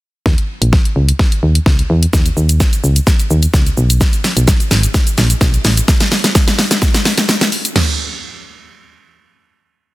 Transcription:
0.26 0.34 D#2 loud
0.26 kick loud
0.26 snare medium
0.38 closed hi-hat medium
0.62 0.78 A#1 medium
0.62 closed hi-hat medium
0.73 kick loud
0.73 snare medium
0.85 closed hi-hat medium
0.96 1.12 C#2 medium
1.09 closed hi-hat medium
1.19 kick loud
1.19 snare medium
1.32 closed hi-hat medium
1.43 1.59 D#2 medium
1.55 closed hi-hat medium
1.66 1.82 C#2 loud
1.66 kick loud
1.66 snare medium
1.79 closed hi-hat soft
1.90 2.06 E2 loud
2.03 closed hi-hat medium
2.13 2.29 D#2 loud
2.13 kick loud
2.13 snare medium
2.13 shaker medium
2.26 closed hi-hat medium
2.26 shaker medium
2.37 2.61 D#2 loud
2.37 shaker soft
2.49 closed hi-hat medium
2.49 shaker medium
2.60 kick loud
2.60 snare medium
2.60 shaker medium
2.73 closed hi-hat medium
2.73 shaker medium
2.84 3.00 C#2 medium
2.84 shaker medium
2.96 closed hi-hat medium
2.96 shaker medium
3.07 kick loud
3.07 snare medium
3.07 shaker medium
3.19 closed hi-hat medium
3.19 shaker medium
3.30 3.46 D#2 medium
3.30 shaker medium
3.43 closed hi-hat medium
3.43 shaker medium
3.54 3.70 C#2 loud
3.54 kick loud
3.54 snare medium
3.54 shaker medium
3.66 closed hi-hat soft
3.66 shaker soft
3.77 4.02 B1 loud
3.77 shaker medium
3.90 closed hi-hat medium
3.90 shaker medium
4.01 kick loud
4.01 snare medium
4.01 shaker medium
4.13 closed hi-hat medium
4.13 shaker medium
4.24 snare medium
4.24 open hi-hat medium
4.24 shaker soft
4.37 4.53 B1 loud
4.37 closed hi-hat medium
4.37 shaker medium
4.48 kick loud
4.48 snare medium
4.48 shaker medium
4.60 closed hi-hat medium
4.60 shaker medium
4.71 4.87 G#1 medium
4.71 snare medium
4.71 open hi-hat medium
4.71 shaker medium
4.83 closed hi-hat medium
4.83 shaker medium
4.94 kick loud
4.94 snare medium
4.94 shaker medium
5.07 closed hi-hat medium
5.07 shaker medium
5.18 5.34 A#1 loud
5.18 snare medium
5.18 open hi-hat medium
5.18 shaker medium
5.30 closed hi-hat medium
5.30 shaker medium
5.41 5.57 B1 loud
5.41 kick loud
5.41 snare loud
5.41 shaker medium
5.54 closed hi-hat medium
5.54 shaker soft
5.65 5.81 A1 loud
5.65 snare loud
5.65 open hi-hat medium
5.65 shaker medium
5.77 closed hi-hat medium
5.77 shaker medium
5.88 kick loud
5.88 snare loud
5.88 shaker medium
6.00 snare loud
6.00 closed hi-hat medium
6.00 shaker medium
6.12 snare loud
6.12 open hi-hat medium
6.12 shaker medium
6.24 snare loud
6.24 closed hi-hat medium
6.24 shaker medium
6.35 kick loud
6.35 snare loud
6.35 shaker medium
6.48 snare loud
6.48 closed hi-hat medium
6.48 shaker medium
6.59 snare loud
6.59 open hi-hat medium
6.59 shaker medium
6.71 snare loud
6.71 closed hi-hat medium
6.71 shaker medium
6.82 kick loud
6.82 snare loud
6.82 shaker medium
6.94 snare loud
6.94 closed hi-hat medium
6.94 shaker medium
7.05 snare loud
7.05 open hi-hat medium
7.05 shaker medium
7.18 snare loud
7.18 closed hi-hat medium
7.18 shaker medium
7.29 snare loud
7.29 shaker medium
7.41 snare loud
7.41 closed hi-hat medium
7.41 shaker medium
7.52 open hi-hat medium
7.52 shaker medium
7.65 closed hi-hat medium
7.65 shaker medium
7.76 snare loud
7.76 floor tom loud
7.76 crash medium

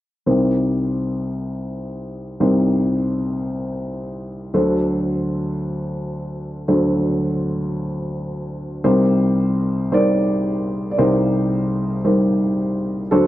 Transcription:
0.26 2.37 C2 soft
0.26 2.37 C3 soft
0.26 2.37 G3 soft
0.26 2.37 D#4 soft
0.26 2.37 A#4 soft
0.26 2.37 C5 soft
2.40 4.50 C2 soft
2.40 4.50 C3 soft
2.40 4.50 G3 soft
2.40 4.50 D#4 soft
2.40 4.50 A#4 soft
2.40 4.50 C5 soft
4.54 6.64 D2 soft
4.54 6.64 D3 soft
4.54 6.64 F#3 soft
4.54 6.64 D4 soft
4.54 6.64 A4 soft
4.54 6.64 C5 soft
6.68 8.81 D2 soft
6.68 8.81 D3 soft
6.68 8.81 F#3 soft
6.68 8.81 D4 soft
6.68 8.81 A4 soft
6.68 8.81 C5 soft
8.84 10.95 C2 soft
8.84 10.95 C3 soft
8.84 9.81 G3 medium
8.84 8.86 D#4 soft
8.84 9.90 D#4 soft
8.84 9.81 A#4 soft
8.84 9.81 C5 medium
9.92 10.88 G3 soft
9.92 10.88 D#4 soft
9.92 10.88 A#4 soft
9.92 10.88 C5 medium
9.92 10.90 D5 medium
10.91 10.99 D5 soft
10.98 13.08 C2 soft
10.98 13.08 C3 soft
10.98 11.94 G3 medium
10.98 11.95 D#4 medium
10.98 11.95 A#4 medium
10.98 11.95 C5 medium
12.05 13.01 G3 soft
12.05 13.01 D#4 soft
12.05 13.01 A#4 soft
12.05 13.01 C5 medium
13.11 13.27 D2 soft
13.11 13.27 D3 soft
13.11 13.27 F#3 medium
13.11 13.27 D4 medium
13.11 13.27 F#4 soft
13.11 13.27 A4 medium
13.11 13.27 C5 medium

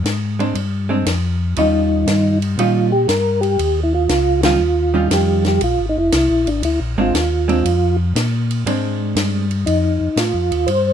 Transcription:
0.04 0.54 G#2 medium
0.04 snare medium
0.04 hi-hat pedal soft
0.04 ride medium
0.39 0.54 G#3 medium
0.39 0.54 C4 medium
0.39 0.55 D4 medium
0.39 ride soft
0.55 1.04 G2 medium
0.55 ride medium
0.89 1.04 G#3 medium
0.89 1.05 C4 medium
0.89 1.05 D4 medium
1.06 1.55 F2 medium
1.06 snare medium
1.06 hi-hat pedal soft
1.06 ride medium
1.56 2.06 D#2 medium
1.56 2.35 D#3 medium
1.56 2.35 G3 medium
1.56 2.35 C#4 medium
1.56 2.38 D#4 loud
1.56 2.36 F4 medium
1.56 ride medium
2.07 2.56 G2 medium
2.07 snare medium
2.07 hi-hat pedal medium
2.07 ride medium
2.42 ride soft
2.58 3.07 A#2 medium
2.58 2.89 D#3 soft
2.58 2.89 G3 medium
2.58 2.90 C#4 medium
2.58 2.91 F4 medium
2.58 2.90 F4 medium
2.58 ride medium
2.92 3.07 G4 medium
3.08 3.57 G2 medium
3.08 3.40 A#4 medium
3.08 snare medium
3.08 hi-hat pedal medium
3.08 ride medium
3.41 3.80 G4 loud
3.41 ride soft
3.59 4.08 D#2 medium
3.59 ride medium
3.83 3.93 E4 medium
3.94 4.41 F4 loud
4.09 4.59 C#2 medium
4.09 snare medium
4.09 hi-hat pedal soft
4.09 ride medium
4.43 4.59 D#3 medium
4.43 4.59 G3 medium
4.43 4.59 C#4 medium
4.43 4.59 F4 medium
4.43 5.08 F4 medium
4.43 snare medium
4.43 ride medium
4.59 5.09 D#2 medium
4.94 5.58 D#3 medium
4.94 5.58 G3 medium
4.94 5.58 C#4 medium
4.94 5.59 F4 medium
5.10 5.60 F2 medium
5.10 5.44 G4 medium
5.10 snare medium
5.10 hi-hat pedal medium
5.10 ride medium
5.45 5.62 G4 medium
5.45 snare medium
5.45 ride soft
5.61 5.78 A#1 medium
5.61 5.86 F4 loud
5.61 ride medium
5.79 5.95 G#1 medium
5.89 5.97 D#4 medium
5.96 6.11 F1 medium
5.96 6.49 E4 medium
6.12 6.29 C2 medium
6.12 snare medium
6.12 hi-hat pedal soft
6.12 ride medium
6.30 6.46 A#1 medium
6.47 6.62 G#1 medium
6.47 6.62 D4 medium
6.47 ride soft
6.63 6.79 D2 medium
6.63 6.80 E4 medium
6.63 ride medium
6.80 6.97 A#1 medium
6.96 7.12 G#1 medium
6.96 7.12 G#3 medium
6.96 7.12 C4 medium
6.96 7.13 D4 medium
7.01 7.96 F4 medium
7.14 7.63 D#2 medium
7.14 snare medium
7.14 hi-hat pedal medium
7.14 ride medium
7.48 7.63 G#3 medium
7.48 7.63 C4 medium
7.48 7.63 D4 medium
7.48 ride soft
7.65 8.14 F2 medium
7.65 ride medium
8.16 8.64 A#2 medium
8.16 snare medium
8.16 hi-hat pedal medium
8.16 ride medium
8.51 ride soft
8.66 9.15 G#2 medium
8.66 9.44 G#3 medium
8.66 9.45 C4 medium
8.66 9.45 D4 medium
8.66 ride medium
9.15 9.65 G2 medium
9.15 snare medium
9.15 hi-hat pedal medium
9.15 ride medium
9.51 ride soft
9.66 9.99 F2 medium
9.66 10.19 D#4 medium
9.66 ride medium
10.01 10.09 F2 soft
10.16 10.33 A2 medium
10.16 10.70 F4 medium
10.16 snare medium
10.16 hi-hat pedal medium
10.16 ride medium
10.34 10.51 F2 medium
10.51 10.67 D#2 medium
10.51 ride soft
10.66 10.93 G2 medium
10.66 10.93 C5 loud
10.66 ride medium

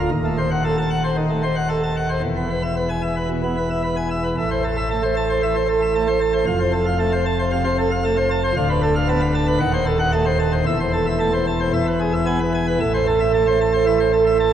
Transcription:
0.12 2.19 D#1 medium
0.12 2.19 D#2 medium
0.25 0.37 A3 medium
0.38 0.50 C5 medium
0.51 0.63 F#5 medium
0.65 0.76 A4 medium
0.78 0.89 A5 medium
0.91 1.02 F#5 medium
1.04 1.16 C5 medium
1.17 1.29 D#3 medium
1.30 1.42 A3 medium
1.43 1.55 C5 medium
1.56 1.68 F#5 medium
1.69 1.81 A4 medium
1.83 1.95 A5 medium
1.96 2.08 F#5 medium
2.09 2.21 C5 medium
2.23 4.33 E1 medium
2.23 4.33 E2 medium
2.36 2.48 B3 medium
2.50 2.62 B4 medium
2.63 2.75 E5 medium
2.77 2.89 B4 medium
2.90 3.02 G#5 medium
3.03 3.15 E5 medium
3.16 3.29 B4 medium
3.30 3.42 B2 medium
3.43 3.55 B3 medium
3.57 3.69 B4 medium
3.70 3.82 E5 medium
3.83 3.95 B4 medium
3.96 4.09 G#5 medium
4.10 4.22 E5 medium
4.23 4.35 B4 soft
4.37 6.43 A1 medium
4.37 6.43 A2 medium
4.37 4.49 E5 medium
4.51 4.62 C5 medium
4.64 4.75 A4 medium
4.77 4.88 E5 medium
4.90 5.02 A3 medium
4.90 5.02 A5 medium
5.03 5.14 C5 medium
5.16 5.28 A5 medium
5.29 5.41 C5 medium
5.43 5.54 E3 medium
5.43 5.54 E5 medium
5.55 5.67 C5 medium
5.68 5.80 A4 medium
5.81 5.93 E5 medium
5.95 6.07 A3 medium
5.95 6.07 A5 medium
6.07 6.19 C5 medium
6.21 6.33 A5 medium
6.33 6.45 C5 medium
6.47 8.52 F1 medium
6.47 8.52 F2 medium
6.47 6.59 F5 medium
6.60 6.72 C5 medium
6.73 6.85 A4 medium
6.86 6.98 F5 medium
6.99 7.11 A3 medium
6.99 7.11 A5 medium
7.12 7.24 C5 medium
7.26 7.37 A5 medium
7.39 7.51 C5 medium
7.52 7.64 C3 medium
7.52 7.64 F5 medium
7.65 7.76 C5 medium
7.78 7.90 A4 medium
7.91 8.03 F5 medium
8.04 8.16 A3 medium
8.04 8.16 A5 medium
8.17 8.29 C5 medium
8.30 8.42 A5 medium
8.44 8.55 C5 medium
8.57 9.57 D1 loud
8.57 9.57 D2 medium
8.57 8.68 F5 medium
8.70 8.81 B4 medium
8.83 8.94 A4 medium
8.96 9.07 F5 medium
9.09 9.20 B3 medium
9.09 9.20 A5 loud
9.22 9.33 B4 medium
9.35 9.46 A5 medium
9.48 9.58 B4 medium
9.60 10.63 D#1 loud
9.60 10.63 D#2 loud
9.60 9.72 F#5 medium
9.74 9.85 C5 medium
9.86 9.98 A4 medium
10.00 10.11 F#5 medium
10.13 10.25 A3 medium
10.13 10.24 A5 loud
10.26 10.38 C5 medium
10.39 10.51 A5 medium
10.53 10.64 C5 medium
10.66 11.70 E1 medium
10.66 11.70 E2 medium
10.66 10.78 E5 medium
10.80 10.92 C5 medium
10.93 11.05 A4 medium
11.06 11.18 E5 medium
11.20 11.32 A3 medium
11.20 11.32 A5 medium
11.33 11.45 C5 medium
11.47 11.59 A5 medium
11.60 11.71 C5 medium
11.73 12.77 E1 medium
11.73 12.77 E2 medium
11.73 11.85 E5 medium
11.87 11.99 B4 medium
12.00 12.12 G#4 medium
12.13 12.25 E5 medium
12.26 12.38 B3 medium
12.26 12.38 G#5 medium
12.40 12.52 B4 medium
12.54 12.66 G#5 medium
12.67 12.78 B4 medium
12.80 14.53 A1 medium
12.80 14.53 A2 medium
12.80 12.92 E5 medium
12.94 13.06 C5 medium
13.07 13.19 A4 medium
13.20 13.32 E5 medium
13.34 13.45 A3 medium
13.34 13.45 A5 medium
13.47 13.58 C5 medium
13.61 13.72 A5 medium
13.73 13.85 C5 medium
13.86 13.98 E3 medium
13.86 13.98 E5 medium
14.00 14.11 C5 medium
14.13 14.24 A4 medium
14.26 14.38 E5 medium
14.40 14.51 A3 medium
14.40 14.51 A5 medium

